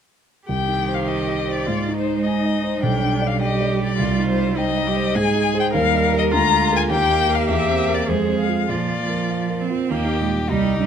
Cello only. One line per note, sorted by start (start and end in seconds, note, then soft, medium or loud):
0.49 1.69 D#3 soft
1.67 2.82 G#3 soft
2.83 5.17 G3 soft
5.16 5.76 G#3 medium
5.74 6.34 G3 medium
6.33 6.90 G#3 medium
6.90 8.11 A#3 medium
8.09 8.69 G#3 soft
8.70 8.99 F3 soft
9.00 9.62 F3 medium
9.61 9.93 C4 medium
9.91 10.20 A#3 soft
10.20 10.28 G#3 soft
10.50 10.79 G3 medium
10.79 10.87 G3 soft